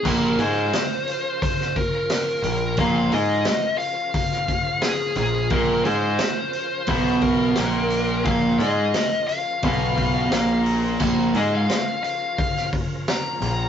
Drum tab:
CC |x---------------|----------------|----------------|----------------|
HH |--o-o-o-o-o-o-o-|o-o-o-o-o-o-o-o-|o-o-o-o-o-o-o-o-|o-o-o-o-o-o-o-o-|
SD |----o----o--o---|----o----o--o---|----o-------o---|----o-------o---|
BD |o-------o-o-----|o-------o-o-----|o-------o-o-----|o-------o-o-----|

CC |x---------------|
HH |--o-o-o-o-o-o-o-|
SD |----o----o--o---|
BD |o-------o-o-----|